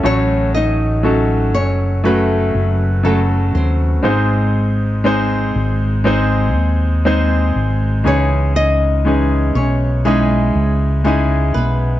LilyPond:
<<
  \new Staff \with { instrumentName = "Nylon-string guitar" } { \time 4/4 \key cis \minor \tempo 4 = 60 <cis' cis''>8 <dis' dis''>4 <cis' cis''>8 <a a'>4 <a a'>8 <bis bis'>8~ | <bis bis'>4. r2 r8 | <cis' cis''>8 <dis' dis''>4 <cis' cis''>8 <gis gis'>4 <gis gis'>8 <b b'>8 | }
  \new Staff \with { instrumentName = "Grand piano" } { \time 4/4 \key cis \minor <fis a cis' fis' a'>4 <fis a cis' fis' a'>4 <fis a cis' fis' b'>4 <cis fis a fis' a'>4 | <gis bis dis' gis' bis'>4 <gis bis dis' gis' bis'>4 <gis bis dis' gis' bis'>4 <gis bis dis' gis' bis'>4 | <e gis cis' dis' gis'>4 <e gis cis' dis' gis'>4 <gis cis' dis' e' gis'>4 <gis cis' dis' e' gis'>4 | }
  \new Staff \with { instrumentName = "Grand piano" } { \clef bass \time 4/4 \key cis \minor a,4. r2 r8 | gis,4. r2 r8 | cis4. r2 r8 | }
  \new Staff \with { instrumentName = "Fingered electric bass" } { \clef bass \time 4/4 \key cis \minor a,,4. fis,,4 fis,,4 dis,8 | gis,,4. gis,,4 dis,4 gis,,8 | cis,4. b,,4 cis,4 b,,8 | }
>>